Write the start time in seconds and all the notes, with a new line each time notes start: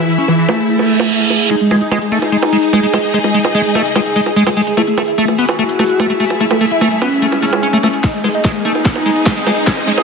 Already playing: E4 G#4 E5
0.08 E3
0.18 C#4
0.28 E3, high bongo
0.38 E3
0.49 A3, high bongo
0.69 reverse cymbal
0.79 high bongo
1.00 high bongo
1.30 high bongo
1.51 G#3 D#4 G#4, closed hi-hat, riser
1.61 G#3, closed hi-hat
1.71 G#3, open hi-hat, high bongo
1.81 D#4, closed hi-hat
1.86 D#5
1.91 G#3, closed hi-hat, high bongo
2.02 G#3, closed hi-hat
2.11 A3 D#4 G#4, open hi-hat
2.22 closed hi-hat, high bongo
2.32 G#3, closed hi-hat
2.43 closed hi-hat, high bongo
2.53 G#3, open hi-hat
2.63 closed hi-hat
2.73 G#3, closed hi-hat, high bongo
2.83 G#3, closed hi-hat
2.93 G#3, open hi-hat, high bongo
3.04 closed hi-hat
3.14 G#3 G#4, closed hi-hat
3.24 G#3, closed hi-hat, high bongo
3.34 G#3, open hi-hat
3.45 G#4, closed hi-hat, high bongo
3.55 G#3, closed hi-hat
3.65 G#3, closed hi-hat
3.75 A3 G#4, open hi-hat, high bongo
3.85 closed hi-hat
3.96 G#3, closed hi-hat, high bongo
4.06 closed hi-hat
4.16 G#3, open hi-hat
4.26 closed hi-hat, high bongo
4.36 G#3, closed hi-hat
4.47 G#3, closed hi-hat, high bongo
4.57 G#3, open hi-hat
4.67 closed hi-hat
4.77 A3 E4, closed hi-hat, high bongo
4.87 A3, closed hi-hat
4.98 A3, open hi-hat, high bongo
5.08 E4, closed hi-hat
5.18 A3, closed hi-hat
5.28 A3, closed hi-hat, high bongo
5.38 B3 F#4, open hi-hat
5.49 closed hi-hat, high bongo
5.59 A3, closed hi-hat
5.69 closed hi-hat
5.79 A3, open hi-hat, high bongo
5.87 E5, closed hi-hat
6.00 A3, closed hi-hat, high bongo
6.10 A3, closed hi-hat
6.20 A3, open hi-hat
6.30 closed hi-hat, high bongo
6.40 A3 E4, closed hi-hat
6.51 A3, closed hi-hat, high bongo
6.61 A3, open hi-hat
6.71 E4, closed hi-hat
6.81 A3, closed hi-hat, high bongo
6.91 A3, closed hi-hat
7.02 B3 C#4, open hi-hat, high bongo
7.12 closed hi-hat
7.22 A3, closed hi-hat
7.32 closed hi-hat, high bongo
7.42 A3, open hi-hat
7.53 closed hi-hat, high bongo
7.63 C#4, closed hi-hat
7.73 A3, closed hi-hat
7.83 A3, open hi-hat, high bongo
7.94 closed hi-hat
8.04 G#3 D#4, kick, snare, closed hi-hat
8.14 G#3, closed hi-hat
8.24 G#3, open hi-hat, high bongo
8.34 D#4, closed hi-hat
8.45 G#3, kick, snare, closed hi-hat, high bongo
8.52 G#3 G#4, closed hi-hat
8.65 A3 D#4, open hi-hat
8.75 closed hi-hat, high bongo
8.85 G#3, kick, snare, closed hi-hat
8.96 closed hi-hat, high bongo
9.06 G#3, open hi-hat
9.13 D#5, closed hi-hat
9.26 G#3, kick, snare, closed hi-hat, high bongo
9.36 G#3, closed hi-hat
9.47 G#3, open hi-hat, high bongo
9.57 closed hi-hat
9.67 G#3 G#4, kick, snare, closed hi-hat
9.77 G#3, closed hi-hat, high bongo
9.87 G#3, open hi-hat
9.98 G#4, closed hi-hat, high bongo